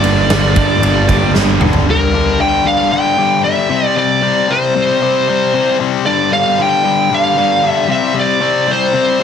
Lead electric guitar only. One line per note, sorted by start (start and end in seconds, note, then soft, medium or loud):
0.00 1.32 D5 medium
1.90 2.37 A#4 loud
2.41 2.67 G5 loud
2.67 2.93 F5 loud
2.92 3.41 G5 loud
3.44 3.87 E5 medium
3.87 3.97 D5 medium
3.98 4.51 D5 loud
4.51 5.76 C5 medium
6.06 6.30 D5 loud
6.33 6.59 F5 loud
6.62 7.14 G5 loud
7.14 7.68 F5 loud
7.68 7.91 E5 loud
7.91 8.15 E5 medium
8.20 8.71 D5 loud
8.71 9.23 C5 medium